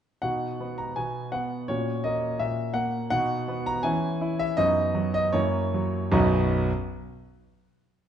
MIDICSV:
0, 0, Header, 1, 2, 480
1, 0, Start_track
1, 0, Key_signature, 5, "major"
1, 0, Tempo, 727273
1, 150, Time_signature, 2, 2, 24, 8
1, 3027, Tempo, 771208
1, 5204, End_track
2, 0, Start_track
2, 0, Title_t, "Grand piano"
2, 0, Program_c, 0, 0
2, 143, Note_on_c, 0, 78, 69
2, 149, Note_on_c, 0, 63, 33
2, 150, Note_on_c, 0, 47, 46
2, 150, Note_on_c, 0, 66, 35
2, 284, Control_c, 0, 64, 127
2, 399, Note_on_c, 0, 59, 43
2, 512, Note_off_c, 0, 78, 0
2, 514, Note_on_c, 0, 82, 63
2, 627, Note_off_c, 0, 47, 0
2, 632, Note_on_c, 0, 80, 63
2, 635, Note_off_c, 0, 82, 0
2, 637, Note_on_c, 0, 47, 45
2, 646, Control_c, 0, 64, 0
2, 866, Note_off_c, 0, 59, 0
2, 870, Note_on_c, 0, 78, 68
2, 872, Note_off_c, 0, 80, 0
2, 876, Note_on_c, 0, 59, 42
2, 1083, Note_off_c, 0, 63, 0
2, 1084, Note_off_c, 0, 66, 0
2, 1096, Note_off_c, 0, 47, 0
2, 1104, Note_off_c, 0, 59, 0
2, 1108, Note_off_c, 0, 78, 0
2, 1110, Note_on_c, 0, 73, 70
2, 1114, Note_on_c, 0, 61, 36
2, 1116, Note_on_c, 0, 46, 54
2, 1117, Note_on_c, 0, 66, 37
2, 1227, Control_c, 0, 64, 127
2, 1344, Note_on_c, 0, 75, 74
2, 1345, Note_off_c, 0, 73, 0
2, 1352, Note_on_c, 0, 58, 43
2, 1574, Note_off_c, 0, 46, 0
2, 1580, Note_off_c, 0, 75, 0
2, 1580, Note_on_c, 0, 76, 75
2, 1584, Note_on_c, 0, 46, 47
2, 1588, Control_c, 0, 64, 0
2, 1802, Note_off_c, 0, 58, 0
2, 1806, Note_on_c, 0, 78, 75
2, 1812, Note_on_c, 0, 58, 44
2, 1817, Note_off_c, 0, 76, 0
2, 2032, Note_off_c, 0, 61, 0
2, 2034, Note_off_c, 0, 66, 0
2, 2039, Note_off_c, 0, 78, 0
2, 2044, Note_off_c, 0, 46, 0
2, 2047, Note_off_c, 0, 58, 0
2, 2049, Note_on_c, 0, 78, 95
2, 2053, Note_on_c, 0, 66, 45
2, 2054, Note_on_c, 0, 63, 42
2, 2057, Note_on_c, 0, 47, 63
2, 2192, Control_c, 0, 64, 127
2, 2298, Note_on_c, 0, 59, 57
2, 2414, Note_off_c, 0, 78, 0
2, 2418, Note_on_c, 0, 82, 90
2, 2511, Note_off_c, 0, 66, 0
2, 2512, Note_off_c, 0, 63, 0
2, 2525, Note_off_c, 0, 47, 0
2, 2527, Note_on_c, 0, 80, 84
2, 2532, Note_off_c, 0, 59, 0
2, 2532, Note_on_c, 0, 61, 47
2, 2535, Note_on_c, 0, 52, 68
2, 2535, Note_on_c, 0, 64, 48
2, 2539, Note_off_c, 0, 82, 0
2, 2545, Control_c, 0, 64, 0
2, 2663, Control_c, 0, 64, 127
2, 2771, Note_off_c, 0, 64, 0
2, 2781, Note_on_c, 0, 64, 63
2, 2897, Note_off_c, 0, 80, 0
2, 2900, Note_on_c, 0, 76, 93
2, 2996, Note_off_c, 0, 61, 0
2, 3009, Note_off_c, 0, 52, 0
2, 3015, Note_on_c, 0, 75, 103
2, 3018, Note_off_c, 0, 64, 0
2, 3019, Note_on_c, 0, 63, 53
2, 3020, Note_on_c, 0, 59, 51
2, 3023, Note_on_c, 0, 42, 74
2, 3024, Note_off_c, 0, 76, 0
2, 3030, Control_c, 0, 64, 0
2, 3140, Control_c, 0, 64, 127
2, 3251, Note_on_c, 0, 54, 65
2, 3363, Note_off_c, 0, 75, 0
2, 3372, Note_on_c, 0, 75, 93
2, 3468, Note_off_c, 0, 63, 0
2, 3469, Note_off_c, 0, 59, 0
2, 3481, Note_off_c, 0, 42, 0
2, 3485, Note_off_c, 0, 54, 0
2, 3487, Note_on_c, 0, 73, 89
2, 3492, Note_on_c, 0, 58, 50
2, 3493, Note_on_c, 0, 64, 50
2, 3494, Note_off_c, 0, 75, 0
2, 3495, Note_on_c, 0, 42, 74
2, 3506, Control_c, 0, 64, 0
2, 3633, Control_c, 0, 64, 127
2, 3745, Note_on_c, 0, 54, 57
2, 3958, Note_off_c, 0, 58, 0
2, 3958, Note_off_c, 0, 64, 0
2, 3969, Note_off_c, 0, 42, 0
2, 3970, Note_off_c, 0, 54, 0
2, 3978, Note_on_c, 0, 42, 82
2, 3978, Note_on_c, 0, 75, 67
2, 3979, Note_on_c, 0, 35, 94
2, 3980, Note_off_c, 0, 73, 0
2, 3980, Note_on_c, 0, 54, 77
2, 3981, Note_on_c, 0, 59, 84
2, 3984, Note_on_c, 0, 63, 75
2, 3986, Note_on_c, 0, 66, 76
2, 3989, Control_c, 0, 64, 0
2, 4092, Control_c, 0, 64, 127
2, 4251, Note_off_c, 0, 42, 0
2, 4252, Note_off_c, 0, 35, 0
2, 4252, Note_off_c, 0, 54, 0
2, 4252, Note_off_c, 0, 75, 0
2, 4253, Note_off_c, 0, 59, 0
2, 4255, Note_off_c, 0, 63, 0
2, 4256, Note_off_c, 0, 66, 0
2, 4337, Control_c, 0, 64, 0
2, 5204, End_track
0, 0, End_of_file